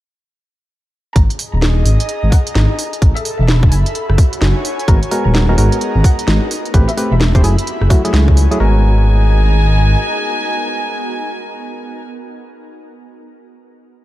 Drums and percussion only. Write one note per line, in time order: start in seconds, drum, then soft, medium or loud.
1.16 kick loud
1.16 closed hi-hat medium
1.30 closed hi-hat soft
1.39 open hi-hat loud
1.62 snare loud
1.86 open hi-hat loud
2.00 closed hi-hat medium
2.09 closed hi-hat medium
2.32 kick loud
2.32 open hi-hat loud
2.47 closed hi-hat medium
2.55 snare loud
2.79 open hi-hat loud
2.93 closed hi-hat soft
3.02 kick loud
3.02 closed hi-hat medium
3.17 closed hi-hat soft
3.25 open hi-hat loud
3.48 snare loud
3.63 kick loud
3.72 open hi-hat loud
3.86 closed hi-hat medium
3.95 closed hi-hat medium
4.10 cross-stick medium
4.18 kick loud
4.18 open hi-hat loud
4.33 closed hi-hat medium
4.42 snare loud
4.65 open hi-hat loud
4.79 closed hi-hat soft
4.88 kick loud
4.88 closed hi-hat medium
5.03 closed hi-hat soft
5.11 open hi-hat loud
5.35 snare loud
5.58 open hi-hat loud
5.72 closed hi-hat medium
5.81 closed hi-hat medium
6.04 kick loud
6.04 open hi-hat loud
6.19 closed hi-hat medium
6.28 snare loud
6.51 open hi-hat loud
6.65 closed hi-hat soft
6.74 kick loud
6.74 closed hi-hat medium
6.89 closed hi-hat medium
6.97 open hi-hat medium
7.21 snare loud
7.35 kick loud
7.35 closed hi-hat soft
7.44 open hi-hat loud
7.58 closed hi-hat medium
7.67 closed hi-hat medium
7.81 cross-stick medium
7.90 kick loud
7.90 open hi-hat loud
8.05 closed hi-hat medium
8.14 snare loud
8.28 kick medium
8.37 open hi-hat loud
8.52 closed hi-hat soft